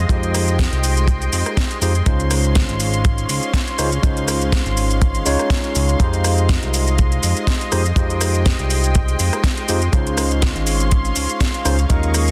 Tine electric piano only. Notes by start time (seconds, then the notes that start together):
0.09 G#3 D#4 F4 G4 C5
1.82 G#3 D#4 F4 G4 C5
2.06 G#3 C#4 D#4 F4 C5
3.78 G#3 C#4 D#4 F4 C5
4.02 G#3 C#4 D#4 F4 C5
5.25 G#3 C#4 D#4 F4 C#5
5.99 G#3 D#4 F4 G4 C5
7.71 G#3 D#4 F4 G4 C5
7.96 G#3 D#4 F4 G4 C5
9.69 G#3 D#4 F4 G4 C5
9.92 G#3 C#4 D#4 F4 C5
11.65 G#3 C#4 D#4 F4 C5
11.89 G#3 C#4 D#4 F4 A#4